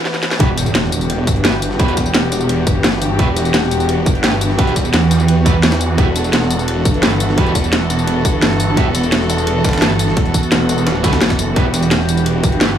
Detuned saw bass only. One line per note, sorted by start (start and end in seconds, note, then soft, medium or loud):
0.40 1.26 E1 loud
1.27 1.78 G1 loud
1.79 2.65 E1 medium
2.67 3.18 G1 loud
3.19 4.05 E1 loud
4.06 4.57 G1 loud
4.59 4.92 E1 medium
4.93 5.97 E2 loud
5.98 6.84 E1 loud
6.85 7.36 G1 loud
7.38 8.23 E1 loud
8.25 8.76 G1 medium
8.77 9.63 E1 loud
9.64 10.15 G1 loud
10.17 10.33 E1 loud
10.52 11.03 E1 loud
11.04 11.20 D2 loud
11.21 11.55 F#1 medium
11.56 12.42 E1 loud
12.43 12.78 G1 loud